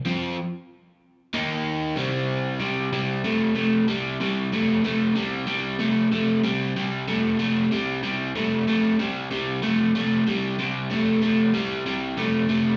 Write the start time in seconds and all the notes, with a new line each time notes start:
0.05 F3 C4 F4
1.33 D#3 A#3 D#4
1.97 C3 G3 C4
2.60 C3 G3
2.93 C3 G3
3.24 C3 A3
3.55 C3 A3
3.88 C3 G3
4.20 C3 G3
4.52 C3 A3
4.84 C3 A3
5.16 C3 G3
5.47 C3 G3
5.80 C3 A3
6.12 C3 A3
6.44 C3 G3
6.76 C3 G3
7.08 C3 A3
7.39 C3 A3
7.71 C3 G3
8.03 C3 G3
8.35 C3 A3
8.67 C3 A3
8.99 C3 G3
9.31 C3 G3
9.62 C3 A3
9.95 C3 A3
10.27 C3 G3
10.59 C3 G3
10.90 C3 A3
11.21 C3 A3
11.54 C3 G3
11.86 C3 G3
12.18 C3 A3
12.49 C3 A3